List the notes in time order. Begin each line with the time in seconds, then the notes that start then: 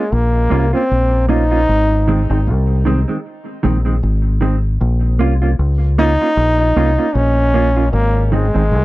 Already playing: G#3
0.12 A#1 A#3
0.50 C2 A#3 C#4 F4
0.73 A#3 C4 C#4 F4
0.91 A#1
1.29 A#3 C#4 D#4 F4
1.51 A#3 C#4 F4
1.69 G#1
2.08 D#3 G#3 C4
2.30 G#1 D#3 G#3 C4
2.47 C2
2.85 D#3 G#3 C4
3.08 D#3 G#3 C4
3.63 A#1 D#3 G#3 C4
3.85 D#3 G#3 C4
4.03 G#1
4.41 D#3 G#3 C4
4.81 A#1
5.19 C2 A#3 C#4 F4
5.42 A#3 C#4 F4
5.59 C#2
5.98 A#3 C#4 D#4 F4
6.21 A#3 C#4 F4
6.37 A#1
6.76 C2 A#3 C#4 F4
6.98 A#3 C#4 F4
7.15 A#1 C#4
7.54 A#3 C#4 F4
7.76 A#3 C#4 F4
7.92 G#1 A#3
8.26 A#3
8.32 D#3 G#3 C4
8.54 G#1 D#3 G#3 C4
8.72 C2